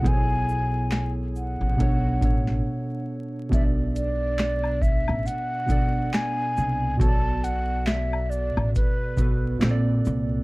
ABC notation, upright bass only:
X:1
M:4/4
L:1/16
Q:"Swing 16ths" 1/4=69
K:Bdor
V:1 name="Upright bass" clef=bass
B,,,6- B,,, A,,, B,,,2 A,,,2 z4 | B,,,6- B,,, A,,, z2 B,,,2 z2 =C,,2 | B,,,6- B,,, A,,, z2 B,,,2 ^A,,,2 =C,,2 |]